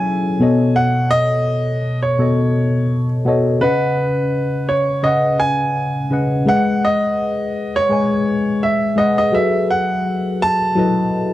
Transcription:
Already playing: tine electric piano F#3 C#4 E4 G#4 A4 C#5, grand piano G#5
0.39 tine electric piano B2 B3 A4 C#5 D#5
0.76 grand piano F#5
1.11 grand piano D#5
2.03 grand piano C#5
2.18 tine electric piano B2 B3 A4 C#5 D#5
3.25 tine electric piano B2 B3 A4 C#5 D#5
3.60 tine electric piano C#3 C#4 B4 D#5 F#5, grand piano B4
4.69 grand piano C#5
5.03 tine electric piano C#3 C#4 B4 D#5 F#5, grand piano D#5
5.40 grand piano G#5
6.10 tine electric piano C#3 C#4 B4 D#5 F#5
6.45 tine electric piano G#3 G#4 B4 D#5 E5, grand piano F#5
6.56 tine electric piano F#5
6.85 grand piano D#5
7.76 grand piano C#5
7.89 tine electric piano G#3 G#4 B4 D#5 G#5
8.63 grand piano E5
8.96 tine electric piano G#3 G#4 B4 D#5 F#5, grand piano D#5
9.18 grand piano D#5
9.32 tine electric piano F#3 F#4 G#4 A4 B4 E5, grand piano E5
9.71 grand piano F#5
10.42 grand piano A5
10.75 tine electric piano F#3 E4 F#4 A4 B4 D#5

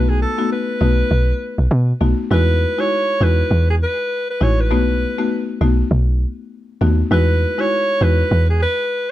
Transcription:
Already playing: log drum bass B1, marimba A3 B3 D#4 F#4, alto saxophone B4
0.09 alto saxophone G#4
0.22 alto saxophone A4
0.38 marimba A3 B3 D#4 F#4
0.52 alto saxophone B4
0.81 log drum bass B1, marimba A3 B3 D#4 F#4
1.11 log drum bass B1
1.58 log drum bass B1
1.71 log drum bass B2
2.01 log drum bass B1, marimba A3 B3 D#4 F#4
2.31 log drum bass E2, marimba G#3 D#4 E4 F#4, alto saxophone B4
2.78 marimba G#3 D#4 E4 F#4, alto saxophone C#5
3.21 log drum bass E2, marimba G#3 D#4 E4 F#4, alto saxophone B4
3.51 log drum bass E2
3.70 alto saxophone G#4
3.83 alto saxophone B4
4.30 alto saxophone B4
4.40 log drum bass A1, marimba G#3 D#4 E4 F#4, alto saxophone C#5
4.60 alto saxophone B4
4.71 log drum bass B1, marimba A3 B3 D#4 F#4
5.18 marimba A3 B3 D#4 F#4
5.61 log drum bass B1, marimba A3 B3 D#4 F#4
5.91 log drum bass B1
6.81 log drum bass D#2, marimba A3 B3 D#4 F#4
7.11 log drum bass E2, marimba G#3 D#4 E4 F#4, alto saxophone B4
7.58 marimba G#3 D#4 E4 F#4, alto saxophone C#5
8.01 log drum bass E2, marimba G#3 D#4 E4 F#4, alto saxophone B4
8.31 log drum bass E2
8.50 alto saxophone G#4
8.62 alto saxophone B4

